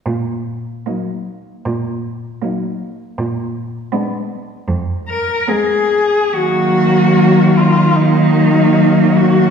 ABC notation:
X:1
M:4/4
L:1/8
Q:1/4=76
K:Ebm
V:1 name="Cello"
z2 E2 z2 E2 | z2 =D2 z B A2 | G3 F E3 G |]
V:2 name="Cello"
z2 B,2 z2 B,2 | z2 C2 z2 C2 | B,4 B,4 |]
V:3 name="Cello" clef=bass
z2 G,2 z2 G,2 | z2 A,2 z2 A,2 | G,4 G,4 |]
V:4 name="Cello" clef=bass
B,,2 z2 B,,2 z2 | B,,2 z2 F,,2 z2 | E,8 |]